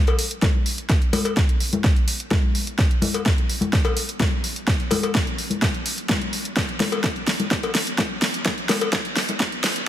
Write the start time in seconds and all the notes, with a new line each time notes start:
0.07 closed hi-hat, cowbell
0.19 open hi-hat
0.31 closed hi-hat
0.42 kick, snare, closed hi-hat, high conga
0.66 open hi-hat
0.78 closed hi-hat
0.90 kick, snare, closed hi-hat
1.02 closed hi-hat
1.13 open hi-hat, cowbell, high conga
1.25 closed hi-hat, cowbell
1.37 kick, snare, closed hi-hat
1.49 closed hi-hat
1.60 open hi-hat
1.73 closed hi-hat, high conga
1.84 kick, snare, closed hi-hat
1.96 closed hi-hat
2.08 open hi-hat
2.20 closed hi-hat
2.31 kick, snare, closed hi-hat, high conga
2.55 open hi-hat
2.67 closed hi-hat
2.78 kick, snare, closed hi-hat
2.91 closed hi-hat
3.02 open hi-hat, high conga
3.14 closed hi-hat, cowbell
3.26 kick, snare, closed hi-hat
3.38 closed hi-hat
3.50 open hi-hat
3.61 closed hi-hat, high conga
3.73 kick, snare, closed hi-hat
3.85 closed hi-hat, cowbell
3.97 open hi-hat
4.09 closed hi-hat
4.20 kick, snare, closed hi-hat, high conga
4.44 open hi-hat
4.56 closed hi-hat
4.67 kick, snare, closed hi-hat
4.80 closed hi-hat
4.91 open hi-hat, cowbell, high conga
5.03 closed hi-hat, cowbell
5.15 kick, snare, closed hi-hat
5.27 closed hi-hat
5.38 open hi-hat
5.50 closed hi-hat, high conga
5.62 kick, snare, closed hi-hat
5.74 closed hi-hat
5.86 open hi-hat
5.98 closed hi-hat
6.09 kick, snare, closed hi-hat, high conga
6.21 closed hi-hat
6.33 open hi-hat
6.45 closed hi-hat
6.56 kick, snare, closed hi-hat
6.69 closed hi-hat
6.80 snare, open hi-hat, high conga
6.92 closed hi-hat, cowbell
7.04 kick, snare, closed hi-hat
7.16 closed hi-hat
7.27 snare, open hi-hat
7.39 closed hi-hat, high conga
7.51 kick, snare, closed hi-hat
7.63 closed hi-hat, cowbell
7.75 snare, open hi-hat
7.87 closed hi-hat
7.98 kick, snare, closed hi-hat, high conga
8.22 snare, open hi-hat
8.34 closed hi-hat
8.45 kick, snare, closed hi-hat
8.58 closed hi-hat
8.69 snare, open hi-hat, cowbell, high conga
8.81 closed hi-hat, cowbell
8.93 kick, snare, closed hi-hat
9.05 closed hi-hat
9.16 snare, open hi-hat
9.29 closed hi-hat, high conga
9.40 kick, snare, closed hi-hat
9.52 closed hi-hat
9.64 snare, open hi-hat
9.76 closed hi-hat